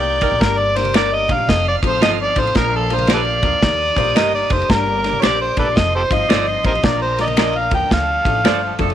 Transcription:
Already playing: C2 G3 A#3 D#4 A#4 D5 G5 G6
0.04 muted conga
0.21 G3 A#3 D#4 A#4, kick, ride, high conga, low conga
0.32 A#1
0.40 G1 G3 A#3 D4 A#4 D5 D6, kick, snare, ride, muted conga
0.58 D5, muted conga
0.76 G3 A#3 D4 A#4 C5, snare, ride
0.84 ride, high conga
0.94 G3 A#3 D4 G4 A#4 D5, finger snap, snare, ride
1.15 D#5
1.28 A#1 G3 A#3 D4 A#4, kick, ride, high conga, low conga
1.33 F5
1.38 low conga
1.47 F1 F3 C4 D#4 A4 D#5 F5 F6, kick, snare, ride, high conga
1.65 D5, muted conga
1.82 A1 F3 C4 D#4 A4, kick, ride
1.88 C5
2.01 G1 F3 C4 D#4 F4 A4 D#5, finger snap, snare, ride, muted conga
2.19 muted conga
2.23 D5
2.36 A1 F3 C4 D#4 A4 C5, kick, ride, high conga, low conga
2.47 ride
2.54 A#1 F3 A#3 D4 A#4 F5 F6, kick, snare, ride, muted conga
2.72 muted conga
2.76 A4
2.90 F3 A#3 D4 A#4, ride
2.95 C5, ride, high conga
3.07 F3 A#3 D4 F4 G4 A#4 D5, finger snap, snare, ride, muted conga
3.14 A4 B4 D5
3.25 muted conga
3.43 D2 F3 A#3 D4 A#4, kick, ride, high conga, low conga
3.52 low conga
3.62 D#2 G3 A#3 D#4 A#4 D#6, kick, snare, ride, muted conga, high conga
3.78 muted conga
3.96 A#1 G3 A#3 D#4 C5, kick, ride
4.15 G1 G3 A#3 D#4 G4 A#4 D#5, finger snap, snare, ride, muted conga
4.33 D5, muted conga
4.50 F1 G3 A#3 D#4 A4 C5, kick, ride, high conga, low conga
4.62 ride
4.69 G1 G3 A#3 D4 A#4 D5 D6, kick, snare, ride
4.86 muted conga
5.04 G3 A#3 D4 A#4, snare, ride
5.13 high conga
5.22 A#1 G3 A#3 D4 G4 A#4 C5 C#5 D5, finger snap, snare, ride, muted conga
5.41 C5
5.57 A#1 G3 A#3 D4 A4 A#4 B4 D5, kick, ride, high conga, low conga
5.66 low conga
5.75 F1 F3 C4 D#4 A4 C5 D#5 C6, kick, snare, ride, muted conga, high conga
5.93 G4 A4 C5, muted conga
6.10 G1 F3 C4 D#4 F4 D#5, kick, ride
6.29 G1 F3 C4 D#4 F4 A4 C5 D5 D#5, finger snap, snare, ride, muted conga
6.47 D#5, muted conga
6.63 A1 F3 C4 D#4 G4 A#4 C5 D#5, kick, ride, high conga, low conga
6.75 ride
6.83 A#1 F3 A#3 D4 A#4 D5 A#5, kick, snare, ride
7.02 C5
7.18 F3 A#3 D4 A#4 D5 D#5, snare, ride
7.27 ride, high conga
7.37 F3 A#3 D4 F4 A#4 D5 D#5, finger snap, snare, ride
7.53 muted conga
7.58 F5
7.71 D2 F3 A#3 D4 A#4 G5, kick, ride, high conga, low conga
7.81 low conga
7.90 D2 F3 A3 D4 A4 F5 A5, kick, snare, ride, muted conga, high conga
8.25 A1 F3 A3 D4 A4, kick, ride
8.44 G1 F3 A3 D4 F4 A4 C5 D5, finger snap, snare, ride, muted conga
8.79 F1 D3 F3 A3 A#3 D4 A4, kick, ride, high conga, low conga
8.90 ride

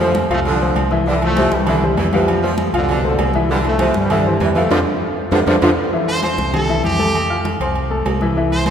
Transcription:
Already playing: F2 D3 F3
0.00 F3 A3 A4 C5, high conga
0.15 high conga, low agogo
0.30 C2 F3 A3 F4 F5, low agogo
0.45 D3 F3, high conga, low agogo
0.61 A3 A4 C5, high conga
0.76 C2, high conga, low agogo
0.91 E3 E4 E5, high conga
1.07 D3 E3 G3 E4 E5, high conga
1.21 F3 A3, high conga, low agogo
1.36 C3 G3 G4 C5, high conga, low agogo
1.52 C2 E3 G3, high conga
1.67 D3 E3 E4 E5, high conga, low conga, low agogo
1.82 G3 G4 C5, high conga
1.97 F2 E3, high conga, low timbale, low agogo
2.13 D3 E3 F3 G3 G4 F5, high conga, low agogo
2.28 high conga, low agogo
2.43 F3 A3 A4 C5, high conga
2.58 high conga, low agogo
2.73 C2 B2 D3 F3 F4 F5, low agogo
2.89 D3, high conga, low agogo
3.04 A3 A4 C5, high conga
3.19 C2, high conga, low timbale, low agogo
3.34 E3 E4 E5, high conga
3.49 D3 E3 G3 E4 E5, high conga
3.64 F3 A3, low agogo
3.79 C3 G3 G4 C5, high conga, low agogo
3.94 G2 E3 G3, high conga
4.10 D3 E3 E4 E5, high conga, low conga, low agogo
4.25 C3 E3 G3 G4 C5, high conga
4.40 F2 E3 G3, high conga, low timbale, low agogo
4.55 E3 F3 A3 F4 F5, high conga, low agogo
4.70 F2 C3 D3 F3 D4 F4 A4, high conga, high timbale
5.31 F2 C3 D3 F3 D4 F4 A4, high conga, high timbale
5.46 F2 C3 D3 F3 D4 F4 A4, high conga, high timbale
5.62 F2 C3 D3 F3 D4 F4 A4, high conga, high timbale
5.93 E3 E4 E5, high conga
6.08 C5, high conga, low agogo
6.23 C4 C5 C6, high conga, low agogo
6.38 C2, high conga
6.54 G3 G4 A4 G5, high conga, low conga, low agogo
6.69 E3 E4 E5, high conga, low conga
6.84 F2 G4, high conga, low agogo
6.99 A3 A4 A5, high conga, low agogo
7.15 high conga, low agogo
7.30 F4 F5 F6, high conga
7.45 high conga, low agogo
7.60 C2 C4 C5 C6, low agogo
7.75 high conga, low agogo
7.90 A3 A4 A5, high conga
8.06 C2, high conga, low timbale, low agogo
8.21 E3 E4 E5, high conga
8.36 E3 E4 E5, high conga
8.51 C5, high conga, low agogo
8.66 C4 C5, high conga, low agogo

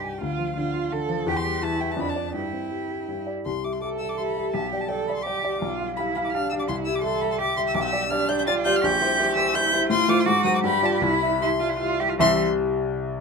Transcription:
Already playing: C2 G2 G3 D#4 G4
0.04 G3 G#5
0.13 G5
0.21 D2 F4 F5
0.39 F3
0.57 D3 F4
0.74 F4
0.92 D3 A4
1.09 F3
1.26 E2 G4 G5
1.37 C6
1.45 G3
1.62 E3 E4 A5
1.80 E4 G5
1.91 A5
1.96 F2 D4 B5
2.09 A5
2.16 D4 D5
2.34 G2 E4 G5
2.53 C4
2.70 G3
2.90 G4
3.08 G2
3.27 G4 D5
3.45 C2 C6
3.64 G3 G4 E5 D6
3.72 C6
3.81 G3 G4 A4 E5 D6
3.99 G3 G4 E6
4.09 D6
4.18 G3 G4 E5 C6
4.26 B5
4.37 G3 G4 E5
4.53 B1 G4 A5
4.71 G3 G4 D5 G5
4.81 A5
4.88 G3 G4 A4 D5 G5
5.08 G3 G4 D5 B5
5.15 C6
5.23 G3 G4 D5 D6
5.44 G3 G4 D5
5.61 B1 F4
5.79 G3 G4 F5
5.97 G3 E4 G4 F5 B5
6.15 G3 G4 F5 B5
6.24 D6
6.33 G3 D4 G4 F5 F6
6.50 G3 G4 F5 E6
6.59 D6
6.68 C2 E4 C6
6.86 G3 G4 E5 E6
6.95 D6
7.03 G3 G4 A4 E5 C6
7.21 G3 G4 E5 B5
7.32 C6
7.38 G3 G4 E5 D6
7.57 G3 G4 E5 C6
7.67 E6
7.75 B1 D6
7.83 E6
7.93 G3 G4 D5
8.10 G3 D4 G4 D5 F6
8.28 G3 G4 D5 G6
8.39 G6
8.46 G3 F4 G4 D5 A6
8.65 G3 G4 D5 G6
8.76 F6
8.81 A#1 G4 G6
9.01 G3 E4 C5
9.18 G3 E4 C5
9.36 G3 E4 C5 E6
9.53 G3 E4 C5 G6
9.72 G3 E4 C5
9.90 A2 F4 C6
10.08 A3 F4 C5 D6
10.20 C6
10.26 G#2 F#4 D6
10.44 F#3 F#4 C5 D#6
10.55 D6
10.64 G2 G4 B5
10.82 G3 F4 D5 A5
10.94 B5
11.01 C2 E4 B5
11.22 G3 E4 E5
11.41 G3 E4 E5 C6
11.60 G3 E4 F4 E5
11.69 E4
11.80 G3 E4 F4 E5
12.00 G3 E4 G4 E5
12.09 F4
12.18 C2 C3 E3 G3 E4 E5 C6

